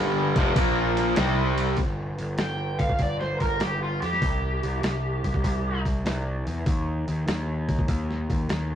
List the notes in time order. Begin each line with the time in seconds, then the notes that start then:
Already playing: G1 G2 D3 G3 A#3 D4 G4 A#4
0.36 F1 F2 C3 F3, kick, ride
0.56 A#1 A#2 F3 A#3 F4 A#4, kick, ride
0.97 snare, ride
1.16 C2 C3 G3 C4 G4 C5, snare, ride
1.58 ride
1.77 G1, kick, open hi-hat
2.19 G1, open hi-hat
2.38 G1 G5, snare, open hi-hat
2.79 F5, kick, open hi-hat
2.89 kick
2.99 G1 D5, kick, open hi-hat
3.20 C5, snare
3.40 G1 A#4, kick, open hi-hat
3.60 G1 G4, snare, open hi-hat
3.83 F4
4.02 F2 G4, open hi-hat
4.13 snare
4.22 C2, kick, open hi-hat
4.63 C2, open hi-hat
4.82 C2, snare, open hi-hat
5.24 C2, kick, open hi-hat
5.34 kick
5.44 C2, kick, open hi-hat
5.85 kick, open hi-hat
6.05 C2, snare, open hi-hat
6.47 E2, open hi-hat
6.66 D#2, kick, open hi-hat
7.08 D#2, open hi-hat
7.27 D#2, snare, open hi-hat
7.69 kick, open hi-hat
7.79 kick
7.88 D#2, kick, open hi-hat
8.11 snare
8.30 D#2, kick, open hi-hat
8.49 D#2, snare, open hi-hat